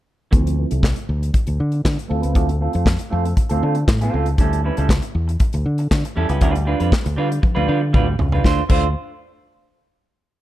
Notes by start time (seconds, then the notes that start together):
0.31 D2 F3 C4 E4 A4, kick, closed hi-hat
0.47 closed hi-hat
0.57 F3 C4 E4 B4
0.70 C2 F3 C4 E4 A4, closed hi-hat
0.82 muted clean electric guitar stroke, kick, snare, clap
0.95 muted clean electric guitar stroke, closed hi-hat
1.09 D2
1.21 muted clean electric guitar stroke, closed hi-hat
1.33 muted clean electric guitar stroke, kick, closed hi-hat
1.47 D2, muted clean electric guitar stroke, closed hi-hat
1.60 D3
1.72 muted clean electric guitar stroke, closed hi-hat
1.83 D3, muted clean electric guitar stroke, kick, snare, clap
1.97 muted clean electric guitar stroke, closed hi-hat
2.08 D2 A3 C4 F4 A4
2.22 C#2 A3 C4 F4 B4, closed hi-hat
2.33 D2 A3 C4 F4 A4, kick, closed hi-hat
2.48 muted clean electric guitar stroke, closed hi-hat
2.60 A3 C4 F4 A4
2.73 F2 A3 C4 F4 A4, closed hi-hat
2.86 muted clean electric guitar stroke, kick, snare, clap
2.99 muted clean electric guitar stroke, closed hi-hat
3.10 F2 A3 C4 F4 A4
3.25 muted clean electric guitar stroke, closed hi-hat
3.36 muted clean electric guitar stroke, kick, closed hi-hat
3.49 D2 A3 C4 F4 A4, closed hi-hat
3.62 D3 A3 C4 F4 A4
3.75 muted clean electric guitar stroke, closed hi-hat
3.87 A2, muted clean electric guitar stroke, kick, snare, clap
4.01 A3 C4 F4 A4, closed hi-hat
4.14 C#2 A3 C4 F4 A4
4.26 muted clean electric guitar stroke, closed hi-hat
4.38 D2 G3 C#4 E4 A4, kick, closed hi-hat
4.53 closed hi-hat
4.64 G3 C#4 E4 B4
4.77 C#2 G3 C#4 E4 A4, closed hi-hat
4.89 kick, snare, clap
5.02 muted clean electric guitar stroke, closed hi-hat
5.15 E2
5.28 muted clean electric guitar stroke, closed hi-hat
5.40 muted clean electric guitar stroke, kick, closed hi-hat
5.53 D2, muted clean electric guitar stroke, closed hi-hat
5.66 D3
5.78 muted clean electric guitar stroke, closed hi-hat
5.91 D3, muted clean electric guitar stroke, kick, snare, clap
6.05 muted clean electric guitar stroke, closed hi-hat
6.16 E2 G3 C#4 E4 A4
6.29 C#2 G3 C#4 E4 B4, closed hi-hat
6.41 D2 G3 D4 F4 B4, kick, closed hi-hat
6.54 muted clean electric guitar stroke, closed hi-hat
6.65 G3 D4 F4 B4
6.79 F2 G3 D4 F4 B4, closed hi-hat
6.92 kick, snare, clap
7.05 D2, muted clean electric guitar stroke, closed hi-hat
7.16 D3 G3 D4 F4 B4
7.30 muted clean electric guitar stroke, closed hi-hat
7.42 muted clean electric guitar stroke, kick, high tom
7.55 D2 G3 D4 F4 B4, high tom
7.67 D3 G3 D4 F4 B4
7.81 muted clean electric guitar stroke
7.93 D2 G3 D4 F4 B4, kick, mid tom
8.08 muted clean electric guitar stroke
8.19 C#2, muted clean electric guitar stroke, floor tom
8.32 G3 D4 F4 B4, floor tom
8.44 D2 A3 D4 F4 C5, kick, snare
8.69 D2 A3 D4 F4 C5, kick, crash